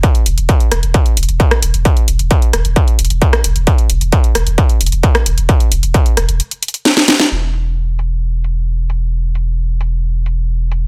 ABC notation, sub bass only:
X:1
M:4/4
L:1/16
Q:1/4=132
K:none
V:1 name="Sub bass" clef=bass
z2 E,,, E,,, z2 E,,, E,,, z2 E,,, E,,, z2 E,,, E,,, | z2 E,,, E,,, z2 E,,, E,,, z2 E,,, E,,, z2 E,,, E,,, | z2 E,,, E,,, z2 E,,, E,,, z2 E,,, E,,, z2 E,,, E,,, | z2 E,,, E,,, z2 E,,, E,,, z8 |
E,,,16- | E,,,16 |]